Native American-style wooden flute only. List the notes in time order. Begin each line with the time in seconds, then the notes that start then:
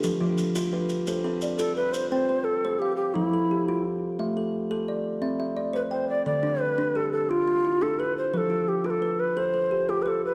1.58 A4
1.76 B4
1.92 C5
2.10 C5
2.44 A4
2.79 G4
2.97 G4
3.14 E4
5.76 B4
5.92 C5
6.09 D5
6.26 D5
6.61 B4
6.96 A4
7.12 A4
7.30 F4
7.82 A4
7.99 B4
8.18 C5
8.34 A4 B4
8.68 G4
8.86 B4
8.90 A4
9.20 B4
9.37 C5
9.89 G4
10.02 B4
10.08 A4
10.25 B4